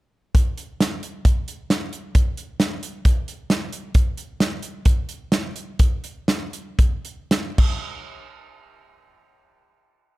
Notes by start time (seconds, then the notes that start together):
0.35 kick, closed hi-hat
0.58 closed hi-hat
0.80 snare, closed hi-hat
1.03 closed hi-hat
1.25 kick, closed hi-hat
1.48 closed hi-hat
1.70 snare, closed hi-hat
1.93 closed hi-hat
2.15 kick, closed hi-hat
2.37 closed hi-hat
2.60 snare, closed hi-hat
2.83 closed hi-hat
3.05 kick, closed hi-hat
3.28 closed hi-hat
3.50 snare, closed hi-hat
3.73 closed hi-hat
3.95 kick, closed hi-hat
4.17 closed hi-hat
4.40 snare, closed hi-hat
4.63 closed hi-hat
4.85 kick, closed hi-hat
5.09 closed hi-hat
5.32 snare, closed hi-hat
5.56 closed hi-hat
5.79 kick, closed hi-hat
6.04 closed hi-hat
6.28 snare, closed hi-hat
6.53 closed hi-hat
6.79 kick, closed hi-hat
7.05 closed hi-hat
7.31 snare, closed hi-hat
7.58 kick, crash